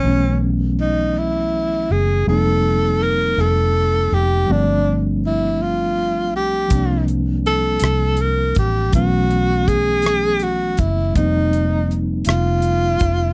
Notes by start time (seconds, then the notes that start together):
Already playing: C#4
0.02 B1 E3 F#3 A3
0.07 B3 C#4
0.81 D#4
1.18 E4
1.91 F#1 G#4
2.25 F1 F3 G3 A#3 A4
2.29 C4 D#4
3.03 A#4
3.38 F1 A4
4.12 F1 G4
4.46 G1 F3 G3 A3
4.50 C4 D4
5.26 E4
5.63 F4
6.34 B1 G4
6.68 C2 F3 G3 A#3, kick, closed hi-hat
6.72 C4 D4
7.08 closed hi-hat
7.46 A4, closed hi-hat
7.79 C2, closed hi-hat
7.84 cross-stick
8.17 closed hi-hat
8.22 A#4
8.55 A1 G4, kick, closed hi-hat
8.91 B1 D#3 F#3 A3, kick, closed hi-hat
8.95 E3 B3 C#4 F#4
9.31 closed hi-hat
9.68 G#4, kick, closed hi-hat
10.02 closed hi-hat
10.06 cross-stick
10.39 F#4, closed hi-hat
10.77 F#1 E4, kick, closed hi-hat
11.13 F1 F3 G3 A#3 D#4, kick, closed hi-hat
11.17 C4 D#4
11.53 closed hi-hat
11.91 closed hi-hat
12.25 F1 F4, closed hi-hat
12.29 cross-stick
12.62 closed hi-hat
12.99 F1, kick, closed hi-hat